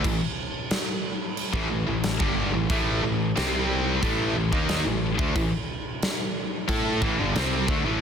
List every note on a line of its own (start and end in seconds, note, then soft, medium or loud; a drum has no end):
0.04 0.20 A1 medium
0.04 0.21 A2 medium
0.04 0.22 E3 medium
0.04 kick loud
0.04 crash medium
0.71 snare loud
0.71 crash medium
1.37 crash medium
1.53 1.69 A1 medium
1.53 1.69 A2 medium
1.53 1.69 E3 medium
1.53 kick loud
1.70 1.86 A1 medium
1.70 1.86 A2 medium
1.70 1.86 E3 medium
1.87 2.18 A1 medium
1.87 2.14 A2 medium
1.87 2.14 E3 medium
2.03 snare loud
2.03 crash medium
2.20 2.51 G1 medium
2.20 2.52 G2 medium
2.20 2.52 D3 loud
2.20 2.53 G3 loud
2.20 kick loud
2.53 2.69 A1 medium
2.53 2.69 A2 medium
2.53 2.70 E3 medium
2.70 3.01 A1 medium
2.70 3.02 A2 medium
2.70 3.02 E3 loud
2.70 3.03 A3 loud
2.70 kick loud
2.70 crash medium
3.03 3.34 A1 medium
3.03 3.30 A2 medium
3.03 3.30 E3 medium
3.36 3.99 C2 loud
3.36 4.02 C3 medium
3.36 4.02 G3 medium
3.36 4.02 C4 loud
3.36 snare loud
3.36 crash medium
4.02 4.34 A1 medium
4.02 4.34 A2 loud
4.02 4.35 E3 medium
4.02 4.35 A3 loud
4.02 kick medium
4.02 crash medium
4.36 4.52 A1 medium
4.36 4.52 A2 medium
4.36 4.52 E3 medium
4.52 4.84 D#2 medium
4.52 4.84 D#3 medium
4.52 4.85 A#3 loud
4.52 4.85 D#4 loud
4.52 kick loud
4.69 snare loud
4.69 crash medium
4.85 5.17 A1 medium
4.85 5.12 A2 medium
4.85 5.12 E3 medium
5.18 5.34 D2 medium
5.18 5.34 D3 medium
5.18 5.34 A3 loud
5.18 kick loud
5.35 5.51 A1 medium
5.35 5.52 A2 medium
5.35 5.52 E3 medium
5.35 kick loud
5.35 crash medium
6.02 snare loud
6.02 crash medium
6.68 7.00 A2 loud
6.68 7.00 A3 medium
6.68 7.01 E4 loud
6.68 7.01 A4 loud
6.68 kick medium
6.68 crash medium
7.01 7.17 A1 loud
7.01 7.17 A2 medium
7.01 7.17 E3 medium
7.01 kick medium
7.18 7.34 G1 medium
7.18 7.33 G2 loud
7.18 7.34 D3 loud
7.34 7.67 C2 medium
7.34 7.67 C3 medium
7.34 7.67 G3 medium
7.34 7.67 C4 loud
7.34 snare loud
7.34 crash medium
7.68 7.83 D2 loud
7.68 7.83 D3 medium
7.68 7.84 A3 medium
7.68 kick loud
7.84 8.00 A1 loud
7.84 8.00 A2 medium
7.84 8.00 E3 loud